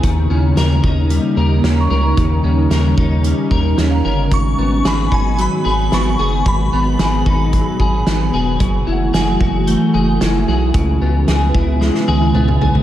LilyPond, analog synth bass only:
\new Staff \with { instrumentName = "Analog synth bass" } { \clef bass \time 4/4 \key gis \phrygian \tempo 4 = 112 dis,8 dis,8 dis,8 dis,8. r16 dis,8 dis,8 cis,8 | dis,8 dis,8 dis,8 dis,8. r16 dis,8 dis,8 g,,8 | gis,,8 gis,,8 gis,,8 gis,,8. r16 gis,,8 gis,,8 fis,,8 | gis,,8 gis,,8 gis,,8 gis,,8. r16 gis,,8 gis,,8 e,,8 |
fis,,8 fis,,8 fis,,8 fis,,8. r16 fis,,8 fis,,8 b,,8 | cis,8 cis,8 cis,8 cis,8. r16 cis,8 cis,8 b,,8 | }